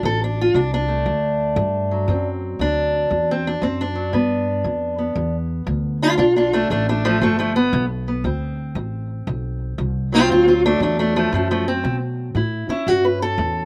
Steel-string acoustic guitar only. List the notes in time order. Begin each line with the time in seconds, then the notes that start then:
Already playing: F#3
0.04 D2 A4
0.24 D4
0.41 F4
0.55 D2 D4
0.74 D4
0.88 A3
1.06 D2
1.57 D2
1.91 F#3
2.09 D2 C4
2.60 D2 D4
3.10 D2
3.31 C4
3.47 D4
3.61 D2 C4
3.81 D4
3.95 F#3
4.13 G2 B3
4.64 G2
4.99 B3
5.15 G2
5.66 G2
6.02 D4 F4
6.17 G2 D4 F4
6.36 D4 F4
6.53 A3 D4
6.70 G2 A3 D4
6.89 A3 D4
7.05 F3 A3
7.22 G2 F3 A3
7.39 F3 A3
7.56 B3
7.74 G2
8.08 B3
8.25 D2 C4
8.76 D2
9.27 D2
9.78 D2
10.12 F#3 C4 F4
10.30 D2 C4 F4
10.48 C4 F4
10.66 A3 D4
10.82 D2 A3 D4
10.99 A3 D4
11.16 F3 A3
11.33 D2 F3 A3
11.51 F3 A3
11.68 C4
11.84 D2
12.36 A2 E4
12.69 C#4 E4
12.87 A2 F#4
13.05 B4
13.22 A4
13.39 A2